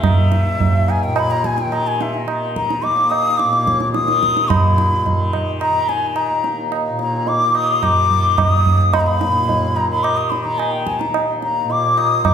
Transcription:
Already playing: tanpura D#2 A#2 D#3
0.04 bansuri E5, tabla na, tabla ge
0.32 tabla te
0.45 tanpura D#2
0.60 tabla tin, tabla ge
0.88 bansuri G#5, tabla na
1.04 tanpura A#2, bansuri G5
1.16 bansuri B5, tabla na
1.31 bansuri A#5
1.44 bansuri G#5, tabla ke
1.58 bansuri G5, tabla te
1.66 tanpura D#3
1.72 bansuri A#5, tabla na
1.87 bansuri G#5
2.01 bansuri E5, tabla te
2.14 bansuri D#5
2.25 tanpura D#3, tabla na
2.56 bansuri A#5, tabla ke
2.70 tabla te
2.83 tanpura D#2, bansuri D6, tabla tin
3.10 bansuri D#6, tabla na
3.38 bansuri D6, tabla te
3.44 tanpura A#2
3.53 tabla te
3.67 tabla ke
3.80 tabla te
3.92 bansuri D#6, tabla te
4.03 tanpura D#3
4.08 tabla te
4.23 tabla ke
4.37 tabla te
4.48 tanpura A#2, bansuri B5, tabla na, tabla ge
4.78 tabla te
5.06 tabla tin, tabla ge
5.10 tanpura D#3
5.33 tabla na
5.61 bansuri A#5, tabla na
5.70 tanpura D#3
5.89 bansuri G#5, tabla te
6.16 bansuri A#5, tabla na
6.29 tanpura D#2
6.44 tabla te
6.72 tabla na
6.89 tanpura A#2
6.99 bansuri A#5, tabla te
7.27 bansuri D6, tabla tin
7.49 tanpura D#3
7.55 bansuri D#6, tabla na
7.83 bansuri D6, tabla na, tabla ge
8.08 tanpura D#3, tabla ge
8.38 bansuri D6, tabla na, tabla ge
8.49 bansuri D#6
8.66 tanpura D#2, tabla ge
8.94 bansuri B5, tabla na, tabla ge
9.00 bansuri A#5
9.06 bansuri B5
9.21 tabla te
9.27 tanpura A#2
9.49 tabla tin, tabla ge
9.76 bansuri A#5, tabla na
9.87 tanpura D#3, bansuri B5
10.03 bansuri D6, tabla na
10.17 bansuri D#6
10.30 bansuri B5, tabla te
10.44 tanpura D#3, bansuri A#5
10.58 bansuri G#5, tabla na
10.71 bansuri G5
10.86 bansuri G#5, tabla ke
10.99 bansuri A#5, tabla te
11.04 tanpura D#2
11.14 tabla na
11.42 bansuri A#5, tabla te
11.64 tanpura A#2
11.70 bansuri D6, tabla tin
11.98 bansuri D#6, tabla na
12.23 tanpura D#3, bansuri D6, tabla na, tabla ge

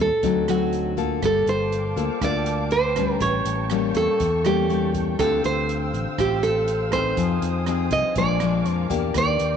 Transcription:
Already playing: nylon-string guitar A2
0.00 fingered electric bass D#2, nylon-string guitar A4
0.23 fingered electric bass D2, nylon-string guitar D3 F#3 C4 D#4, kick, closed hi-hat
0.48 nylon-string guitar F#3 C4 D#4 F#4, cross-stick, closed hi-hat
0.73 closed hi-hat
0.97 nylon-string guitar A#3 F4 A4, kick, closed hi-hat
1.22 fingered electric bass G1, nylon-string guitar G3 A4, string section F5 G5 A5 D6, kick, cross-stick, closed hi-hat
1.46 fingered electric bass G1, nylon-string guitar C5, closed hi-hat
1.72 closed hi-hat
1.96 fingered electric bass D2, nylon-string guitar A#3 F4 A4, closed hi-hat
2.21 fingered electric bass D2, nylon-string guitar D3 A#3 F4 A4 D5, kick, cross-stick, closed hi-hat
2.46 closed hi-hat
2.71 nylon-string guitar C5, closed hi-hat
2.96 nylon-string guitar G3 C#4, kick, cross-stick, closed hi-hat
3.20 fingered electric bass A1, nylon-string guitar A2 C#5, string section A#3 A5 C#6, kick, closed hi-hat
3.45 fingered electric bass A1, closed hi-hat
3.70 nylon-string guitar G3 A#3 C#4, cross-stick, closed hi-hat
3.94 fingered electric bass E2, nylon-string guitar A4, closed hi-hat
4.20 fingered electric bass E2, nylon-string guitar E3, kick, closed hi-hat
4.45 nylon-string guitar G3 A#3 C#4 G4, cross-stick, closed hi-hat
4.70 nylon-string guitar G3 A#3 C#4, closed hi-hat
4.94 kick, closed hi-hat
5.19 fingered electric bass D2, nylon-string guitar D3 C4 F4 G4 A4, string section C5 F5 E6, kick, cross-stick, closed hi-hat
5.44 fingered electric bass D2, nylon-string guitar C5, closed hi-hat
5.69 closed hi-hat
5.93 fingered electric bass A1, closed hi-hat
6.18 fingered electric bass A1, nylon-string guitar A2 C4 F4 G4, kick, cross-stick, closed hi-hat
6.43 nylon-string guitar A4, closed hi-hat
6.68 closed hi-hat
6.92 nylon-string guitar C4 D#4 G#4 C5, kick, cross-stick, closed hi-hat
7.17 fingered electric bass F2, nylon-string guitar F3, string section G#5 D#6, kick, closed hi-hat
7.42 fingered electric bass F2, closed hi-hat
7.67 nylon-string guitar C4 D#4 G#4, cross-stick, closed hi-hat
7.91 fingered electric bass C2, nylon-string guitar D#5, kick, closed hi-hat
8.16 fingered electric bass A#1, nylon-string guitar A#2 F3 G#3 D4 D5, string section A#4 F5 D6, kick, closed hi-hat
8.40 nylon-string guitar F3 G#3 D4, cross-stick, closed hi-hat
8.65 fingered electric bass F2, closed hi-hat
8.69 nylon-string guitar C5
8.90 fingered electric bass E2, nylon-string guitar A#3 D4 G4, kick, closed hi-hat
9.14 fingered electric bass D#2, nylon-string guitar D#3 D5, string section A#4 D5 G5 D6, kick, cross-stick, closed hi-hat
9.39 fingered electric bass D#2, closed hi-hat

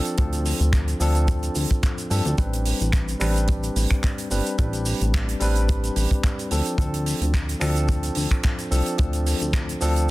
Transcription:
Already playing: tine electric piano F3 C4 D4 A4
0.05 closed hi-hat, shaker
0.17 analog synth bass D2, tine electric piano F3 C4 D4 A4, kick, closed hi-hat, shaker
0.33 closed hi-hat, shaker
0.46 open hi-hat, shaker
0.59 analog synth bass D2, closed hi-hat, shaker
0.73 kick, clap, closed hi-hat, shaker
0.88 closed hi-hat, shaker
1.00 analog synth bass D2, tine electric piano F3 C4 D4 A4, open hi-hat, shaker
1.15 closed hi-hat, shaker
1.28 kick, closed hi-hat, shaker
1.43 closed hi-hat, shaker
1.55 analog synth bass D2, open hi-hat, shaker
1.71 kick, closed hi-hat, shaker
1.83 kick, clap, closed hi-hat, shaker
1.98 closed hi-hat, shaker
2.10 analog synth bass G2, tine electric piano F3 C4 D4 A4, open hi-hat, shaker
2.25 analog synth bass D2, closed hi-hat, shaker
2.37 analog synth bass A1, tine electric piano G3 C4 D4 B4, kick, closed hi-hat, shaker
2.53 closed hi-hat, shaker
2.66 open hi-hat, shaker
2.80 analog synth bass A1, closed hi-hat, shaker
2.92 finger snap, kick, clap, closed hi-hat, shaker
3.08 closed hi-hat, shaker
3.20 analog synth bass A1, tine electric piano G3 C4 D4 B4, finger snap, open hi-hat, shaker
3.36 closed hi-hat, shaker
3.48 kick, closed hi-hat, shaker
3.63 closed hi-hat, shaker
3.76 analog synth bass A1, open hi-hat, shaker
3.91 finger snap, kick, shaker
4.03 kick, clap, closed hi-hat, shaker
4.18 closed hi-hat, shaker
4.31 analog synth bass G1, tine electric piano G3 C4 D4 B4, open hi-hat, shaker
4.46 closed hi-hat, shaker
4.58 analog synth bass A1, tine electric piano G3 C4 D4 B4, kick, closed hi-hat, shaker
4.73 closed hi-hat, shaker
4.86 open hi-hat, shaker
5.01 analog synth bass A1, closed hi-hat, shaker
5.14 finger snap, kick, clap, closed hi-hat, shaker
5.29 closed hi-hat, shaker
5.40 analog synth bass A1, tine electric piano G3 C4 D4 B4, open hi-hat, shaker
5.56 closed hi-hat, shaker
5.69 kick, closed hi-hat, shaker
5.84 closed hi-hat, shaker
5.96 analog synth bass A1, open hi-hat, shaker
6.11 kick, closed hi-hat, shaker
6.24 kick, clap, closed hi-hat, shaker
6.39 closed hi-hat, shaker
6.51 analog synth bass D2, tine electric piano F3 C4 D4 A4, open hi-hat, shaker
6.66 closed hi-hat, shaker
6.78 analog synth bass D2, tine electric piano F3 C4 D4 A4, kick, closed hi-hat, shaker
6.94 closed hi-hat, shaker
7.06 open hi-hat, shaker
7.21 analog synth bass D2, closed hi-hat, shaker
7.34 finger snap, kick, clap, closed hi-hat, shaker
7.49 closed hi-hat, shaker
7.60 analog synth bass D2, tine electric piano F3 C4 D4 A4, finger snap, open hi-hat, shaker
7.76 closed hi-hat, shaker
7.89 kick, closed hi-hat, shaker
8.03 closed hi-hat, shaker
8.15 analog synth bass D2, open hi-hat, shaker
8.31 finger snap, kick, closed hi-hat, shaker
8.43 kick, clap, closed hi-hat, shaker
8.59 closed hi-hat, shaker
8.71 analog synth bass C2, tine electric piano F3 C4 D4 A4, open hi-hat, shaker
8.86 closed hi-hat, shaker
8.98 analog synth bass D2, tine electric piano F3 C4 D4 A4, kick, closed hi-hat, shaker
9.13 closed hi-hat, shaker
9.27 open hi-hat, shaker
9.40 analog synth bass D2, closed hi-hat, shaker
9.53 finger snap, kick, clap, closed hi-hat, shaker
9.69 closed hi-hat, shaker
9.80 analog synth bass D2, tine electric piano F3 C4 D4 A4, open hi-hat, shaker
9.96 closed hi-hat, shaker

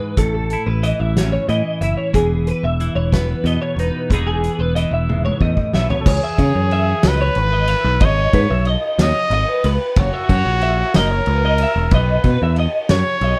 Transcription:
Already playing: clean electric guitar G#2 E3 D#4 B4
0.17 picked electric bass A1, clean electric guitar A2 A4, kick, closed hi-hat
0.34 clean electric guitar A4
0.50 clean electric guitar E4, closed hi-hat
0.66 picked electric bass A1, clean electric guitar B4
0.83 clean electric guitar E3 D#5, closed hi-hat
0.99 picked electric bass A1, clean electric guitar E5
1.16 clean electric guitar C#4, snare, closed hi-hat
1.32 clean electric guitar C#5
1.49 picked electric bass A2, clean electric guitar E3 D#5, closed hi-hat
1.81 picked electric bass F#1, clean electric guitar E4 E5, closed hi-hat
1.97 clean electric guitar C#5
2.13 picked electric bass E1, clean electric guitar E2 G#4, kick, closed hi-hat
2.47 clean electric guitar B4, closed hi-hat
2.63 picked electric bass E1, clean electric guitar E5
2.80 clean electric guitar E3, closed hi-hat
2.95 picked electric bass E1, clean electric guitar C#5
3.12 clean electric guitar B3 B4, kick, snare, closed hi-hat
3.44 picked electric bass E2, clean electric guitar B2 D#5, closed hi-hat
3.62 clean electric guitar C#5
3.76 picked electric bass E1, clean electric guitar D#4 B4, closed hi-hat
4.10 picked electric bass E1, clean electric guitar E2 E3 B3 D#4 G#4, kick, closed hi-hat
4.15 clean electric guitar G#4
4.27 clean electric guitar G#4
4.44 closed hi-hat
4.59 picked electric bass E1, clean electric guitar B4
4.75 clean electric guitar E3 D#5, closed hi-hat
4.91 picked electric bass E1, clean electric guitar E5
5.09 clean electric guitar G#2, high tom
5.25 clean electric guitar C#5, high tom
5.41 picked electric bass E2, clean electric guitar A2 D#5, kick
5.57 kick
5.73 picked electric bass B1, clean electric guitar B2 E5, snare
5.90 clean electric guitar C#5, floor tom
6.00 trumpet A4
6.06 picked electric bass C#2, trumpet G#4, clean electric guitar C#5, kick, crash
6.23 clean electric guitar E5
6.38 picked electric bass C#3, clean electric guitar C#5, kick, ride
6.55 picked electric bass F#2
6.71 clean electric guitar E5, ride
7.03 picked electric bass C#2, clean electric guitar D#5, snare, ride
7.08 trumpet B4
7.21 clean electric guitar C#5
7.35 picked electric bass G#1, clean electric guitar B4, ride
7.52 clean electric guitar D#5
7.68 clean electric guitar E5, ride
7.84 picked electric bass B1
8.00 picked electric bass G#1, clean electric guitar D#5, kick, ride
8.05 trumpet C#5
8.33 picked electric bass G#2, clean electric guitar B4, kick, ride
8.50 picked electric bass B1, clean electric guitar E5
8.65 clean electric guitar D#5, ride
8.99 picked electric bass D#2, clean electric guitar C#5, trumpet D#5, snare, ride
9.30 picked electric bass G#1, clean electric guitar D#5, ride
9.48 clean electric guitar B4
9.64 picked electric bass C#2, clean electric guitar B4, ride
9.96 picked electric bass F#1, trumpet F#4, clean electric guitar C#5, kick, ride
10.13 clean electric guitar E5
10.29 picked electric bass F#2, clean electric guitar C#5, kick, ride
10.45 picked electric bass A#1
10.61 clean electric guitar E5, ride
10.94 picked electric bass F#1, trumpet A#4, clean electric guitar D#5, snare, ride
11.10 clean electric guitar C#5
11.26 picked electric bass C#2, clean electric guitar B4, ride
11.45 clean electric guitar D#5
11.58 ride
11.63 clean electric guitar E5
11.76 picked electric bass E1
11.91 picked electric bass B1, trumpet B4, clean electric guitar D#5, kick, ride
12.24 picked electric bass B2, clean electric guitar B4, kick, ride
12.42 picked electric bass E2, clean electric guitar E5
12.56 clean electric guitar D#5, ride
12.89 picked electric bass F#2, clean electric guitar C#5, trumpet C#5, snare, ride
13.21 picked electric bass B1, clean electric guitar D#5, ride

